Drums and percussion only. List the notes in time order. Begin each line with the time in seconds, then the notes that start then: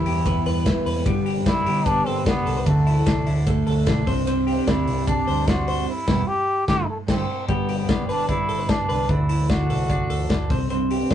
0.06 open hi-hat
0.26 kick, hi-hat pedal, ride
0.46 open hi-hat
0.66 kick, snare, hi-hat pedal, ride
0.86 open hi-hat
1.06 kick, hi-hat pedal, ride
1.26 open hi-hat
1.46 kick, snare, hi-hat pedal, ride
1.66 open hi-hat
1.86 kick, hi-hat pedal, ride
2.06 open hi-hat
2.26 kick, snare, hi-hat pedal, ride
2.47 open hi-hat
2.66 kick, hi-hat pedal, ride
2.87 open hi-hat
3.06 kick, snare, hi-hat pedal, ride
3.27 open hi-hat
3.46 kick, hi-hat pedal, ride
3.67 open hi-hat
3.86 kick, snare, hi-hat pedal, ride
4.07 kick, open hi-hat
4.27 hi-hat pedal, ride
4.47 open hi-hat
4.67 kick, snare, hi-hat pedal, ride
4.87 open hi-hat
5.08 kick, hi-hat pedal, ride
5.28 open hi-hat
5.47 kick, snare, hi-hat pedal, ride
5.68 open hi-hat
6.08 kick, snare, crash
6.68 kick, snare
7.08 kick, snare, crash
7.49 kick, closed hi-hat
7.69 open hi-hat
7.89 kick, snare, closed hi-hat
8.09 open hi-hat
8.29 kick, closed hi-hat
8.49 open hi-hat
8.69 kick, snare, closed hi-hat
8.90 open hi-hat
9.09 kick, closed hi-hat
9.29 open hi-hat
9.49 kick, snare, closed hi-hat
9.70 open hi-hat
9.90 kick, closed hi-hat
10.10 open hi-hat
10.30 kick, snare, closed hi-hat
10.50 kick, open hi-hat
10.70 closed hi-hat
10.90 open hi-hat
11.10 kick, snare, closed hi-hat